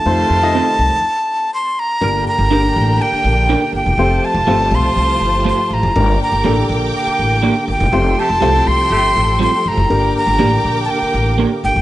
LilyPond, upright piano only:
\new Staff \with { instrumentName = "Upright piano" } { \time 4/4 \key g \minor \tempo 4 = 122 <a ees' f' c''>8 r16 <a ees' f' ees''>4 r2 r16 | <d' g' bes'>8. r16 <d' g' bes'>4~ <d' g' bes'>16 r4. r16 | <a c' f' g' c''>8. r16 <a c' f' g' a'>4~ <a c' f' g' a'>16 r4. r16 | <d' g' bes'>8. r16 <d' g' a'>4~ <d' g' a'>16 r4. r16 |
<a c' f' g' c''>8. r16 <a c' f' g' c''>4~ <a c' f' g' c''>16 r4. r16 | <d' g' bes'>8. r16 <d' g' bes'>4~ <d' g' bes'>16 r4. r16 | }